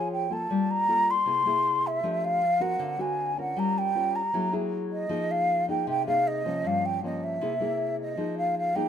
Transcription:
0.00 0.47 F3 medium
0.00 0.27 F4 medium
0.00 0.27 G#4 medium
0.00 0.27 C#5 medium
0.00 0.12 G#5 medium
0.13 0.35 G5 medium
0.30 0.84 A#3 medium
0.30 0.84 F4 medium
0.30 0.85 A4 medium
0.30 0.72 A5 medium
0.50 1.24 G3 medium
0.71 1.12 A#5 loud
0.88 1.13 A#3 medium
0.88 1.14 F4 medium
0.88 1.14 A4 medium
1.11 1.88 C6 loud
1.26 2.00 C3 medium
1.26 1.42 A#3 soft
1.26 1.42 E4 soft
1.26 1.42 G#4 medium
1.46 2.00 A#3 medium
1.46 2.00 E4 medium
1.46 2.00 G#4 medium
1.87 2.26 E5 medium
2.03 2.78 F3 medium
2.03 2.41 A3 soft
2.03 2.41 D4 soft
2.03 2.41 G4 soft
2.24 2.63 F5 medium
2.60 2.95 C4 medium
2.60 2.96 F#4 medium
2.60 2.96 A#4 medium
2.60 3.03 F#5 medium
2.79 3.54 D3 medium
2.98 3.34 C4 medium
2.98 3.34 F#4 medium
2.98 3.34 A#4 medium
2.98 3.38 G#5 medium
3.37 3.92 C#4 soft
3.37 3.92 F4 soft
3.37 3.92 A#4 medium
3.37 3.61 F#5 medium
3.56 4.31 G3 medium
3.56 3.80 A#5 medium
3.78 4.17 G5 loud
3.95 4.21 C#4 soft
3.95 4.21 F4 medium
3.95 4.21 A#4 medium
4.16 4.53 A#5 medium
4.33 5.08 F#3 medium
4.33 4.49 A#3 soft
4.33 4.50 E4 soft
4.33 4.50 G#4 medium
4.52 5.07 A#3 medium
4.52 5.07 E4 medium
4.52 5.07 G#4 medium
4.92 5.33 D#5 medium
5.09 5.85 F3 medium
5.09 5.64 A#3 soft
5.09 5.65 D#4 soft
5.09 5.65 G#4 medium
5.31 5.69 F5 loud
5.68 6.04 A#3 medium
5.68 6.03 D#4 medium
5.68 6.04 G#4 medium
5.68 5.87 G5 medium
5.87 6.62 C3 medium
5.87 6.06 G5 loud
6.07 6.42 A#3 medium
6.07 6.42 D#4 medium
6.07 6.42 G#4 medium
6.07 6.29 F5 medium
6.27 6.68 D#5 medium
6.45 7.00 F3 medium
6.45 7.00 A#3 medium
6.45 7.00 C#4 medium
6.65 7.39 G2 medium
6.65 6.87 F5 loud
6.86 7.04 G5 medium
7.03 7.40 F3 medium
7.03 7.40 A#3 medium
7.03 7.40 C#4 medium
7.03 7.25 D#5 medium
7.24 8.00 E5 medium
7.41 8.16 C3 medium
7.41 7.53 A#3 medium
7.41 7.53 E4 soft
7.41 7.53 G#4 medium
7.60 8.15 A#3 medium
7.60 8.15 E4 medium
7.60 8.16 G#4 medium
8.01 8.36 D#5 medium
8.17 8.89 F3 medium
8.17 8.72 A#3 soft
8.17 8.72 D#4 soft
8.17 8.73 G#4 medium
8.38 8.55 F5 medium
8.58 8.77 F5 medium
8.75 8.89 A#3 medium
8.75 8.89 D#4 medium
8.75 8.89 G#4 medium
8.75 8.89 G5 medium

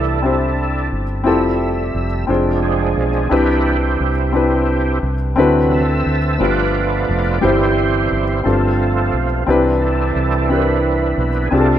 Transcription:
0.00 0.89 C2 medium
0.00 0.20 C3 soft
0.00 0.19 E3 soft
0.00 0.20 A3 soft
0.00 0.22 C4 medium
0.00 0.23 D4 medium
0.00 0.88 D4 medium
0.00 0.24 E4 medium
0.00 0.88 E4 medium
0.00 0.25 G4 medium
0.00 0.87 A4 medium
0.00 1.27 A4 medium
0.22 1.03 C4 medium
0.22 1.03 D4 medium
0.22 1.04 E4 medium
0.22 1.04 G4 medium
0.22 1.05 C5 medium
0.92 1.26 G1 medium
1.24 1.91 F1 medium
1.24 2.25 G3 soft
1.24 2.25 A3 soft
1.24 2.05 C4 medium
1.24 2.05 E4 medium
1.24 2.06 F4 medium
1.24 2.07 G4 medium
1.24 2.07 A4 medium
1.24 2.25 E5 soft
1.94 2.26 F1 medium
2.27 2.94 F1 medium
2.27 3.28 F3 soft
2.27 3.28 G#3 soft
2.27 3.08 C4 medium
2.27 3.08 D4 medium
2.27 2.62 D4 soft
2.27 3.09 F4 medium
2.27 3.09 G#4 medium
2.27 3.10 C5 medium
2.63 3.28 C4 medium
2.63 3.28 D4 medium
2.63 3.34 G#4 medium
2.97 3.29 B1 medium
3.29 3.96 C2 medium
3.29 4.30 C3 soft
3.29 3.77 E3 soft
3.29 4.11 C4 medium
3.29 4.99 C4 medium
3.29 4.11 D4 medium
3.29 3.77 D4 soft
3.29 4.11 E4 medium
3.29 4.99 E4 medium
3.29 4.99 G4 medium
3.29 4.12 G4 medium
3.29 3.77 B4 soft
3.29 4.12 B4 medium
4.00 4.99 C2 medium
4.33 5.13 C4 medium
4.33 5.14 D4 medium
4.33 5.14 E4 medium
4.33 5.15 G4 medium
4.33 5.15 B4 medium
5.03 5.34 C2 medium
5.36 6.02 D2 medium
5.36 5.82 C3 soft
5.36 6.36 D3 medium
5.36 5.83 E3 soft
5.36 5.83 F#3 soft
5.36 6.16 C4 medium
5.36 6.17 D4 medium
5.36 6.17 E4 medium
5.36 6.18 F#4 medium
5.36 5.83 B4 soft
5.36 6.18 B4 medium
5.71 6.36 C4 medium
5.71 6.36 A4 medium
5.71 6.32 E5 medium
6.06 6.38 D2 medium
6.33 6.40 E5 medium
6.38 7.05 G1 medium
6.38 7.39 G2 soft
6.38 7.38 F3 soft
6.38 7.39 A3 soft
6.38 7.19 B3 medium
6.38 7.39 B3 soft
6.38 7.19 D4 soft
6.38 7.20 F4 soft
6.38 7.39 F4 medium
6.38 7.20 G4 medium
6.38 7.39 B4 medium
6.38 7.20 B4 medium
6.38 7.46 D5 medium
7.09 7.40 F1 medium
7.41 8.07 G1 medium
7.41 8.41 G2 soft
7.41 8.40 E3 soft
7.41 8.22 G3 medium
7.41 8.41 G3 soft
7.41 8.22 C4 medium
7.41 8.41 C4 soft
7.41 8.41 E4 medium
7.41 8.22 E4 medium
7.41 8.41 G4 medium
7.41 8.23 G4 medium
7.41 8.48 C5 medium
7.41 8.23 C5 medium
8.11 8.43 G1 medium
8.44 9.10 G1 medium
8.44 9.44 G2 soft
8.44 9.43 F3 soft
8.44 9.44 A3 soft
8.44 9.24 C4 medium
8.44 9.44 C4 soft
8.44 9.24 D4 soft
8.44 9.25 F4 soft
8.44 9.44 F4 soft
8.44 9.25 G4 soft
8.44 9.18 A4 medium
8.44 9.26 A4 medium
9.13 9.45 B1 medium
9.46 10.12 C2 medium
9.46 10.46 C3 medium
9.46 11.18 E3 soft
9.46 10.27 C4 medium
9.46 11.48 C4 soft
9.46 10.27 D4 medium
9.46 9.81 D4 soft
9.46 10.28 E4 medium
9.46 10.28 G4 medium
9.46 10.29 B4 medium
9.82 10.50 D4 medium
9.82 10.50 E4 medium
9.82 10.46 A4 medium
10.16 11.14 C2 medium
10.49 11.29 C4 medium
10.49 11.29 D4 soft
10.49 11.19 D4 medium
10.49 11.30 E4 soft
10.49 11.49 E4 medium
10.49 11.30 G4 soft
10.49 10.58 A#4 soft
10.49 11.48 B4 medium
10.59 11.34 B4 medium
11.18 11.49 B1 medium
11.18 11.49 E3 soft
11.18 11.50 B3 soft
11.18 11.50 D4 soft
11.46 11.53 G#4 medium
11.51 11.79 C2 medium
11.51 11.79 C3 soft
11.51 11.79 G3 soft
11.51 11.79 A3 soft
11.51 11.79 C4 medium
11.51 11.79 D4 medium
11.51 11.79 D4 soft
11.51 11.79 F4 medium
11.51 11.79 F4 soft
11.51 11.79 G4 medium
11.51 11.60 G#4 medium
11.51 11.79 A4 medium
11.61 11.79 A4 medium

